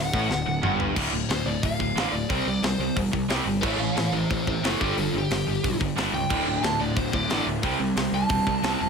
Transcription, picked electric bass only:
0.00 0.12 D1 medium
0.13 0.29 A1 medium
0.30 0.45 D1 medium
0.47 0.62 D1 medium
0.63 0.94 G1 medium
0.96 1.07 D1 loud
1.13 1.23 D1 medium
1.30 1.40 D2 medium
1.45 1.56 D1 medium
1.63 1.74 D1 medium
1.80 1.91 D1 medium
1.95 2.06 A1 medium
2.13 2.23 D1 medium
2.29 2.40 C2 loud
2.46 2.57 C2 medium
2.62 2.73 C2 medium
2.78 2.89 C2 medium
2.97 3.07 E1 medium
3.13 3.24 C2 medium
3.29 3.40 C2 medium
3.45 3.63 G1 medium
3.63 3.74 A1 medium
3.78 3.89 A1 medium
3.97 4.07 A2 medium
4.12 4.23 A1 medium
4.31 4.41 A1 medium
4.47 4.58 A1 loud
4.63 4.74 F#1 medium
4.81 4.91 G1 medium
4.97 5.08 G1 loud
5.14 5.24 G1 medium
5.30 5.40 G1 medium
5.47 5.57 G1 medium
5.64 5.74 B1 medium
5.81 5.91 G1 medium
5.96 6.07 G1 medium
6.12 6.23 C#2 medium
6.30 6.41 D1 medium
6.46 6.57 D1 medium
6.64 6.74 D2 medium
6.80 6.91 D1 medium
6.96 7.07 D1 medium
7.13 7.24 D1 medium
7.29 7.40 A1 medium
7.46 7.57 D1 medium
7.64 7.74 C2 medium
7.80 7.90 C2 medium
7.96 8.07 C2 medium
8.12 8.23 C2 medium
8.30 8.40 E1 medium
8.47 8.57 C2 medium
8.63 8.74 C2 medium
8.81 8.89 E1 medium

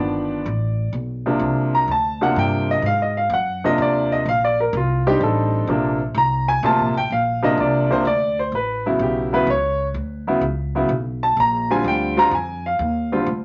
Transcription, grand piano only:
0.00 0.43 D#3 medium
0.00 0.43 F3 medium
0.00 0.43 B3 medium
0.00 0.43 D4 medium
0.00 0.91 D5 medium
1.26 1.85 C3 medium
1.26 1.85 F3 medium
1.26 1.85 A#3 medium
1.26 1.85 D4 medium
1.75 1.88 A#5 medium
1.91 2.21 A5 loud
2.21 2.80 C3 medium
2.21 2.80 F3 medium
2.21 2.80 A#3 medium
2.21 2.80 D4 medium
2.21 2.36 F#5 loud
2.39 2.69 G5 loud
2.71 2.84 D#5 loud
2.86 3.00 F5 loud
3.02 3.16 D#5 medium
3.17 3.31 F5 medium
3.33 3.64 F#5 loud
3.64 4.23 C3 medium
3.64 4.23 F3 medium
3.64 4.23 A#3 medium
3.64 4.23 D4 medium
3.64 3.79 D#5 loud
3.82 4.11 D5 medium
4.12 4.26 D#5 medium
4.29 4.42 F5 loud
4.45 4.58 D5 medium
4.60 4.74 A#4 medium
4.77 5.06 F4 medium
5.07 5.65 G3 medium
5.07 5.65 C4 medium
5.07 5.65 D4 medium
5.07 5.66 D#4 medium
5.07 5.20 G4 loud
5.23 5.98 A4 medium
5.68 5.97 C3 medium
5.68 5.98 F3 medium
5.68 5.98 A#3 medium
5.68 5.98 D4 medium
6.18 6.48 A#5 loud
6.48 6.62 G#5 loud
6.63 6.92 C3 medium
6.63 6.93 F3 medium
6.63 6.93 A#3 medium
6.63 6.93 F4 medium
6.63 6.96 A5 loud
6.97 7.11 G5 loud
7.12 7.43 F5 loud
7.43 7.87 C3 medium
7.43 7.87 F3 medium
7.43 7.87 A#3 medium
7.43 7.87 D4 medium
7.43 7.58 D#5 loud
7.60 7.90 D5 medium
7.90 8.04 C3 medium
7.90 8.03 F3 medium
7.90 8.04 A#3 medium
7.90 8.04 D4 medium
7.90 8.05 C5 loud
8.07 8.37 D5 loud
8.39 8.53 C5 medium
8.55 8.85 B4 medium
8.86 9.30 C#3 medium
8.86 9.30 F#3 medium
8.86 9.30 B3 medium
8.86 9.30 E4 medium
9.02 9.33 G4 medium
9.33 9.46 C#3 medium
9.33 9.46 F#3 medium
9.33 9.46 B3 medium
9.33 9.46 E4 medium
9.33 9.47 B4 loud
9.50 9.86 C#5 medium
10.27 10.41 C#3 medium
10.27 10.40 F#3 medium
10.27 10.41 B3 medium
10.27 10.41 E4 medium
10.75 10.88 C#3 medium
10.75 10.88 F#3 medium
10.75 10.88 B3 medium
10.75 10.89 E4 medium
11.23 11.37 A5 loud
11.40 11.70 A#5 loud
11.70 12.14 D3 medium
11.70 12.14 G3 medium
11.70 12.14 C4 medium
11.70 12.14 F4 medium
11.70 11.85 G#5 loud
11.88 12.18 G5 loud
12.17 12.30 D3 medium
12.17 12.30 G3 medium
12.17 12.30 C4 medium
12.17 12.30 F4 medium
12.17 12.32 A#5 loud
12.35 12.65 G#5 medium
12.66 13.09 F5 medium
13.12 13.25 D3 medium
13.12 13.25 G3 medium
13.12 13.25 C4 medium
13.12 13.25 F4 medium

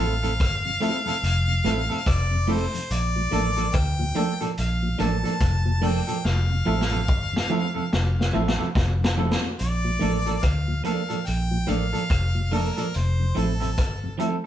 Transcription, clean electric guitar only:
0.00 0.13 A3 medium
0.00 0.13 C4 medium
0.00 0.14 E4 medium
0.00 0.14 A4 medium
0.23 0.31 A3 medium
0.23 0.31 C4 medium
0.23 0.31 E4 medium
0.23 0.31 A4 medium
0.80 0.96 A3 medium
0.80 0.97 C4 medium
0.80 0.97 E4 medium
0.80 0.97 A4 medium
1.07 1.15 A3 medium
1.07 1.15 C4 medium
1.07 1.15 E4 medium
1.07 1.14 A4 medium
1.64 1.80 A3 medium
1.64 1.80 C4 medium
1.64 1.80 E4 medium
1.64 1.81 A4 medium
1.90 1.98 A3 medium
1.90 1.98 C4 medium
1.90 1.98 E4 medium
1.90 1.98 A4 medium
2.47 2.63 A3 medium
2.47 2.64 C4 medium
2.47 2.64 E4 medium
2.47 2.64 A4 medium
3.32 3.47 F3 medium
3.32 3.47 A#3 medium
3.32 3.48 D4 medium
3.32 3.48 A4 loud
3.57 3.66 F3 medium
3.57 3.65 A#3 medium
3.57 3.65 D4 medium
3.57 3.65 A4 medium
4.15 4.31 F3 medium
4.15 4.31 A#3 medium
4.15 4.31 D4 medium
4.15 4.31 A4 medium
4.41 4.49 F3 medium
4.41 4.49 A#3 medium
4.41 4.49 D4 medium
4.41 4.49 A4 medium
4.99 5.14 F3 medium
4.99 5.14 A#3 medium
4.99 5.15 D4 loud
4.99 5.15 A4 medium
5.24 5.33 F3 medium
5.24 5.33 A#3 medium
5.24 5.32 D4 medium
5.24 5.32 A4 medium
5.82 5.98 F3 medium
5.82 5.98 A#3 medium
5.82 5.98 D4 medium
5.82 5.98 A4 medium
6.07 6.16 F3 medium
6.07 6.16 A#3 soft
6.07 6.16 D4 medium
6.07 6.15 A4 medium
6.66 6.81 F3 medium
6.66 6.82 C4 medium
6.66 6.82 E4 loud
6.66 6.82 A4 loud
6.91 7.00 F3 medium
6.91 7.00 C4 medium
6.91 7.00 E4 medium
6.91 6.99 A4 medium
7.49 7.65 F3 medium
7.49 7.65 C4 medium
7.49 7.66 E4 medium
7.49 7.66 A4 medium
7.75 7.84 F3 medium
7.75 7.83 C4 medium
7.75 7.83 E4 medium
7.75 7.83 A4 medium
8.33 8.49 F3 medium
8.33 8.49 C4 medium
8.33 8.49 E4 medium
8.33 8.50 A4 loud
8.58 8.67 F3 medium
8.58 8.67 C4 medium
8.58 8.67 E4 medium
8.58 8.67 A4 medium
9.17 9.33 F3 medium
9.17 9.33 C4 medium
9.17 9.33 E4 medium
9.17 9.33 A4 medium
10.00 10.16 F3 medium
10.00 10.16 A#3 medium
10.00 10.17 D4 medium
10.00 10.17 A4 medium
10.26 10.35 F3 medium
10.26 10.35 A#3 medium
10.26 10.35 D4 medium
10.26 10.34 A4 medium
10.84 11.00 F3 medium
10.84 11.00 A#3 medium
10.84 11.01 D4 medium
10.84 11.01 A4 medium
11.09 11.18 F3 soft
11.09 11.18 A#3 medium
11.09 11.18 D4 soft
11.09 11.17 A4 medium
11.67 11.83 F3 medium
11.67 11.83 A#3 medium
11.67 11.84 D4 medium
11.67 11.84 A4 medium
11.93 12.02 F3 soft
11.93 12.02 A#3 soft
11.93 12.01 D4 medium
11.93 12.01 A4 medium
12.51 12.67 F3 medium
12.51 12.68 A#3 medium
12.51 12.68 D4 medium
12.51 12.68 A4 medium
12.77 12.86 F3 medium
12.77 12.86 A#3 medium
12.77 12.85 D4 medium
12.77 12.85 A4 medium
13.35 13.51 F3 medium
13.35 13.51 C4 medium
13.35 13.52 E4 medium
13.35 13.52 A4 medium
13.60 13.69 F3 soft
13.60 13.69 C4 medium
13.60 13.69 E4 medium
13.60 13.69 A4 medium
14.18 14.34 F3 medium
14.18 14.35 C4 medium
14.18 14.35 E4 medium
14.18 14.35 A4 medium

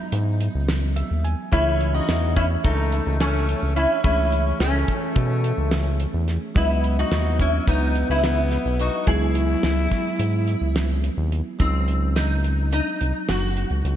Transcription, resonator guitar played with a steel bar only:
0.00 1.21 D#4 medium
1.52 1.91 E4 medium
1.94 2.33 F#4 medium
2.36 2.44 E4 medium
2.64 3.22 D#4 medium
3.20 3.78 C#4 medium
3.76 4.02 E4 medium
4.04 4.62 E4 medium
4.60 6.24 C#4 medium
6.57 6.99 E4 medium
6.99 7.38 F#4 medium
7.41 7.68 E4 medium
7.68 8.10 D#4 medium
8.11 8.80 E4 medium
8.80 9.09 F#4 medium
9.08 11.00 G#4 medium
11.60 12.18 C4 medium
12.16 12.72 D#4 medium
12.73 13.30 D#4 medium
13.29 13.81 F#4 medium

